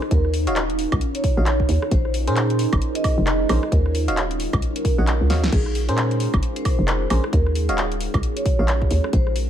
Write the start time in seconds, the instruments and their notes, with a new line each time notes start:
Already playing: ambient pad C#4 D#4 F4 C5
0.02 cross-stick
0.11 fm bass D#2, ambient pad F#4 A#4, vibraphone A#4, kick, closed hi-hat
0.25 cross-stick
0.34 open hi-hat
0.47 fm bass D#1, fm electric piano F#4 C#5 D#5 F5, closed hi-hat
0.56 clap, closed hi-hat
0.70 closed hi-hat
0.79 open hi-hat
0.92 fm bass C#2, kick, closed hi-hat, high woodblock
1.01 closed hi-hat
1.15 vibraphone C#5, closed hi-hat
1.24 kick, open hi-hat
1.37 fm bass A#1, fm electric piano F#4 C#5 D#5 F5
1.46 clap, closed hi-hat
1.60 kick
1.69 fm bass D#2, open hi-hat
1.82 cross-stick
1.91 fm bass A#1, ambient pad C#4 G#4 C5, vibraphone C5, kick, closed hi-hat
2.05 cross-stick
2.14 open hi-hat
2.27 fm bass A#2, fm electric piano C#4 G#4 A#4 C5, ambient pad G#4, closed hi-hat
2.36 clap, closed hi-hat
2.50 closed hi-hat
2.59 open hi-hat
2.73 fm bass G#1, kick, closed hi-hat, high woodblock
2.82 closed hi-hat
2.95 vibraphone D#5, closed hi-hat
3.04 kick, open hi-hat, high woodblock
3.18 fm bass F1
3.27 clap, closed hi-hat
3.49 fm bass A#1, fm electric piano C#4 G#4 A#4 C5, open hi-hat, high woodblock
3.63 cross-stick
3.72 fm bass D#2, ambient pad F#4 A#4, vibraphone A#4, kick, closed hi-hat
3.86 cross-stick
3.95 open hi-hat
4.08 fm bass D#1, fm electric piano F#4 C#5 D#5 F5, closed hi-hat
4.14 ambient pad C#5, clap, closed hi-hat
4.31 closed hi-hat
4.40 open hi-hat
4.53 fm bass C#2, kick, closed hi-hat, high woodblock
4.62 closed hi-hat
4.76 vibraphone A#4, closed hi-hat
4.85 kick, open hi-hat
4.98 fm bass A#1, fm electric piano F#4 C#5 D#5 F#5
5.07 clap, closed hi-hat
5.21 fm bass C#2
5.30 fm bass D#2, fm electric piano F#4 C#5 D#5 F5, snare, open hi-hat
5.43 fm bass C#2, snare
5.53 fm bass A#1, vibraphone G#4, ambient pad G#4 C5, kick, closed hi-hat, crash
5.66 cross-stick
5.75 open hi-hat
5.89 fm bass A#2, fm electric piano C#4 G#4 A#4 C5, closed hi-hat
5.98 clap, closed hi-hat
6.11 closed hi-hat
6.20 open hi-hat
6.34 fm bass G#1, kick, closed hi-hat, high woodblock
6.43 closed hi-hat
6.56 vibraphone C5, closed hi-hat
6.65 kick, open hi-hat, high woodblock
6.79 fm bass F1
6.88 clap, closed hi-hat
7.10 fm bass A#1, fm electric piano C#4 G#4 A#4 C5, open hi-hat, high woodblock
7.24 cross-stick
7.33 fm bass D#2, ambient pad F#4 A#4, vibraphone A#4, kick, closed hi-hat
7.46 cross-stick
7.55 open hi-hat
7.69 fm bass D#1, fm electric piano F#4 C#5 D#5 F5, closed hi-hat
7.78 clap, closed hi-hat
7.92 closed hi-hat
8.01 ambient pad C#5, open hi-hat
8.14 fm bass C#2, kick, closed hi-hat, high woodblock
8.23 closed hi-hat
8.37 vibraphone C#5, closed hi-hat
8.46 kick, open hi-hat
8.59 fm bass A#1, fm electric piano F#4 C#5 D#5 F5
8.68 clap, closed hi-hat
8.82 kick
8.91 fm bass D#2, open hi-hat
9.04 cross-stick
9.13 fm bass A#1, ambient pad F4 G#4 C5, vibraphone C5, kick, closed hi-hat
9.27 cross-stick
9.36 open hi-hat